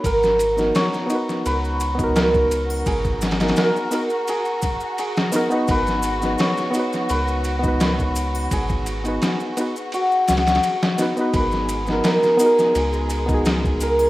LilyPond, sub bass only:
\new Staff \with { instrumentName = "Sub bass" } { \clef bass \time 4/4 \key gis \minor \tempo 4 = 85 gis,,4 r4 cis,2 | gis,,4 r2. | gis,,4 r4 cis,2 | gis,,4 r4. cis,8 r4 |
gis,,4 r4 cis,2 | }